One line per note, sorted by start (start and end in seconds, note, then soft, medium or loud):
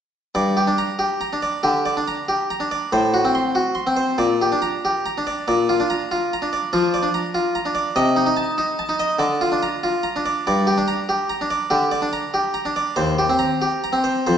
0.35 0.67 G2 medium
0.35 0.59 D5 medium
0.57 0.80 G4 medium
0.67 1.02 D4 soft
0.78 1.02 A#5 medium
0.99 1.23 G4 soft
1.21 1.44 A#5 soft
1.33 1.67 D4 soft
1.42 1.66 D5 soft
1.63 1.98 D3 medium
1.63 1.87 G4 medium
1.86 2.09 D5 soft
1.97 2.31 D4 soft
2.08 2.31 A#5 soft
2.28 2.52 G4 soft
2.50 2.73 A#5 soft
2.60 2.93 D4 soft
2.71 2.93 D5 soft
2.92 3.24 A2 medium
2.92 3.15 C5 medium
3.14 3.36 F#4 medium
3.25 3.58 C4 soft
3.35 3.57 C6 medium
3.55 3.78 F#4 soft
3.75 3.99 C6 soft
3.87 4.20 C4 soft
3.97 4.19 C5 soft
4.18 4.51 A#2 medium
4.18 4.42 D5 medium
4.42 4.65 G4 soft
4.52 4.86 D4 soft
4.62 4.85 A#5 medium
4.85 5.07 G4 soft
5.06 5.28 A#5 soft
5.18 5.49 D4 soft
5.27 5.47 D5 soft
5.48 5.79 A#2 medium
5.48 5.70 D5 medium
5.69 5.91 F4 medium
5.80 6.13 D4 soft
5.90 6.12 A#5 medium
6.11 6.33 F4 medium
6.33 6.54 A#5 soft
6.42 6.75 D4 soft
6.53 6.75 D5 soft
6.73 7.06 F3 soft
6.73 6.95 F4 medium
6.94 7.16 D5 medium
7.03 7.36 D4 soft
7.14 7.36 A#5 soft
7.35 7.57 F4 soft
7.55 7.77 A#5 medium
7.65 7.97 D4 soft
7.75 7.96 D5 medium
7.96 8.26 C3 medium
7.96 8.18 D#5 medium
8.16 8.25 D#4 medium
8.26 8.57 D#4 medium
8.37 8.59 A5 medium
8.58 8.80 D#4 medium
8.79 9.01 A5 medium
8.89 9.20 D#4 soft
8.99 9.20 D#5 medium
9.19 9.50 D3 medium
9.19 9.42 D5 medium
9.41 9.63 F4 medium
9.52 9.85 D4 soft
9.63 9.85 A#5 medium
9.83 10.06 F4 soft
10.03 10.26 A#5 medium
10.16 10.47 D4 medium
10.26 10.46 D5 medium
10.47 10.77 G2 medium
10.47 10.69 D5 medium
10.67 10.89 G4 medium
10.78 11.11 D4 medium
10.88 11.10 A#5 medium
11.09 11.31 G4 medium
11.30 11.52 A#5 medium
11.41 11.74 D4 soft
11.51 11.73 D5 medium
11.70 12.04 D3 medium
11.70 11.93 G4 medium
11.91 12.14 D5 medium
12.02 12.36 D4 medium
12.13 12.36 A#5 medium
12.34 12.57 G4 medium
12.54 12.77 A#5 medium
12.65 12.98 D4 soft
12.76 12.98 D5 medium
12.96 13.29 D#2 medium
12.96 13.20 C5 medium
13.19 13.42 G4 medium
13.29 13.64 C4 medium
13.39 13.63 A#5 medium
13.62 13.85 G4 medium
13.84 14.06 A#5 medium
13.93 14.25 C4 medium
14.04 14.25 C5 soft
14.27 14.38 F2 medium
14.27 14.38 C5 medium